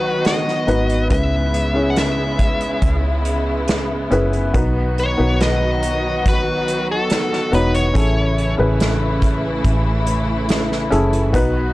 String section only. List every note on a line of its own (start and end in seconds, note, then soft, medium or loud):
0.00 1.07 D#3 medium
0.00 1.08 F#3 medium
0.00 7.91 B3 medium
0.00 1.07 F#4 medium
1.11 4.51 C#3 medium
1.11 4.51 G#3 medium
1.11 4.51 E4 medium
4.54 7.92 D#3 medium
4.54 7.92 F#3 medium
4.54 7.92 F#4 medium
7.96 11.31 C#3 medium
7.96 11.31 E3 medium
7.96 11.31 A3 medium
7.96 11.31 E4 medium
11.34 11.73 D#3 medium
11.34 11.73 F#3 medium
11.34 11.73 B3 medium
11.34 11.73 F#4 medium